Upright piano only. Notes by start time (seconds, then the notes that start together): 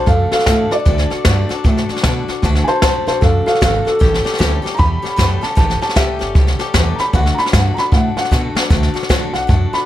0.07 A4 F5
0.32 A4 F5
0.47 A4 F5
0.72 D5
2.64 C5 G#5
2.68 A5
2.83 C5 A5
3.08 C5 A5
3.21 A4 F5
3.46 A4 F5
3.62 A4 F5
3.87 A4
4.75 A#5
4.79 B5
5.19 B5
5.43 A5
5.58 A5
5.82 A5
5.96 G4 E5
6.95 A#5
7.00 B5
7.14 F#5
7.34 A#5
7.38 B5
7.54 F#5
7.74 A#5
7.79 B5
7.93 F#5
8.17 F#5
9.34 F#5
9.74 B5